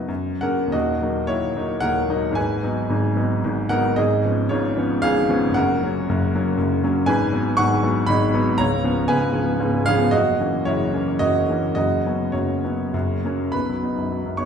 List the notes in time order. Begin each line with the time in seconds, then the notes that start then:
Already playing: F#1 F#2 F#3 B3 D#4 F#4 B4 D#5 E5
0.08 F#2
0.41 F#3 A#3 C#4 A#4 F#5
0.67 D#1
0.72 D#2 F#4 D#5
1.02 F#3 A#3 D#4
1.27 D#1 D#2 E4 C#5
1.56 F#3 A#3 D#4
1.80 D#1 D#2 A#4 F#5
2.09 F#3 A#3 D#4
2.31 G#1 G#2
2.35 B4 G#5
2.63 F#3 B3 D#4
2.89 G#1 G#2
3.16 F#3 B3 D#4
3.44 G#1 G#2
3.69 F#3 B3 D#4 A#4 F#5
3.96 G#1 G#2 G#4 D#5
4.25 F3 B3 C#4
4.49 G#1 G#2 F4 C#5
4.77 F3 B3 C#4
5.02 G#1 G#2 G#4 F5
5.29 F3 B3 C#4
5.49 F#1
5.54 F#2 A#4 F#5
5.82 F#3 A#3 C#4
6.09 F#1 F#2
6.35 F#3 A#3 C#4
6.57 F#1 F#2
6.84 F#3 A#3 C#4
7.06 G#1 G#2 B4 G#5
7.33 F#3 B3
7.57 G#1 G#2 F#5 C#6
7.83 F#3 B3
8.06 G#1 G#2 D#5 B5
8.34 F#3 B3
8.58 C#1 C#2 C#5 A#5
8.84 F3 B3 C#4
9.08 C#1 C#2 B4 G#5
9.33 F3 B3 C#4
9.60 C#1 C#2
9.86 F3 B3 C#4 G#4 F5
10.11 F#1 F#2 F#4 D#5
10.40 E3 A#3 C#4
10.65 F#1 F#2 E4 C#5
10.93 E3 A#3 C#4
11.19 F#1 F#2 F#4 D#5
11.49 E3 A#3 C#4
11.75 F#1 F#2 F#4 D#5
12.06 F#3 B3 C#4
12.32 F#1 F#2 F#4 C#5
12.64 F#3 B3 C#4
12.93 F#1 F#2
13.25 F#3 A#3 C#4
13.52 B1 B4 B5
13.69 F#3
13.83 B3 D#4
13.98 F#2
14.12 F#3
14.26 F#2
14.37 B3 D#4 C#5 C#6